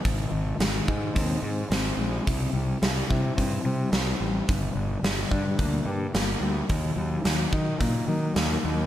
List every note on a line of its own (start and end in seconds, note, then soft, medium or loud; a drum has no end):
0.04 0.25 G#1 medium
0.04 1.43 G#2 medium
0.04 kick medium
0.04 open hi-hat soft
0.32 0.52 G#1 medium
0.32 1.71 D#3 medium
0.59 0.79 G#1 medium
0.59 1.42 G#3 medium
0.59 snare loud
0.59 open hi-hat soft
0.88 1.08 G#2 medium
0.88 2.27 D#4 medium
0.88 kick medium
1.15 1.36 D#2 medium
1.15 1.70 C4 medium
1.15 kick medium
1.15 open hi-hat soft
1.43 1.63 G#2 medium
1.43 1.98 G#3 medium
1.70 1.91 G#1 medium
1.70 2.27 C4 medium
1.70 snare medium
1.70 open hi-hat soft
1.97 2.18 A#1 medium
1.97 2.27 G#3 medium
2.26 2.47 C2 medium
2.26 3.66 C3 medium
2.26 kick medium
2.26 open hi-hat soft
2.53 2.74 C2 medium
2.53 2.80 G3 medium
2.82 3.02 C2 medium
2.82 3.64 G3 medium
2.82 snare loud
2.82 open hi-hat soft
3.10 3.30 C3 medium
3.10 4.49 E4 medium
3.10 kick medium
3.37 3.58 G2 medium
3.37 3.91 C4 medium
3.37 kick medium
3.37 open hi-hat soft
3.65 3.85 C3 medium
3.65 4.19 G3 medium
3.92 4.13 C2 medium
3.92 4.49 C4 medium
3.92 snare medium
3.92 open hi-hat soft
4.20 4.41 A1 medium
4.20 4.49 G3 medium
4.48 4.69 G1 medium
4.48 5.87 G2 medium
4.48 kick medium
4.48 open hi-hat soft
4.75 4.96 G1 medium
4.75 6.15 D3 medium
5.03 5.23 G1 medium
5.03 5.85 G3 medium
5.03 snare medium
5.03 open hi-hat soft
5.31 5.52 G2 medium
5.31 6.70 D4 medium
5.31 kick medium
5.58 5.79 D2 medium
5.58 6.12 A#3 medium
5.58 kick medium
5.58 open hi-hat soft
5.86 6.06 G2 medium
5.86 6.39 G3 medium
6.13 6.34 G1 medium
6.13 6.70 A#3 medium
6.13 snare medium
6.13 open hi-hat soft
6.40 6.61 D2 medium
6.40 6.69 G3 medium
6.68 6.90 D#2 medium
6.68 8.08 D#3 medium
6.68 kick medium
6.68 open hi-hat soft
6.96 7.17 D#2 medium
6.96 7.23 F#3 medium
7.24 7.45 D#2 medium
7.24 8.07 F#3 medium
7.24 snare medium
7.24 open hi-hat soft
7.52 7.72 D#3 medium
7.52 8.86 D#4 medium
7.52 kick medium
7.80 8.00 A#2 medium
7.80 8.34 A#3 medium
7.80 kick medium
7.80 open hi-hat soft
8.08 8.28 D#3 medium
8.08 8.61 F#3 medium
8.36 8.56 D#2 medium
8.36 8.86 A#3 medium
8.36 snare medium
8.36 open hi-hat soft
8.63 8.84 D#2 medium
8.63 8.86 F#3 medium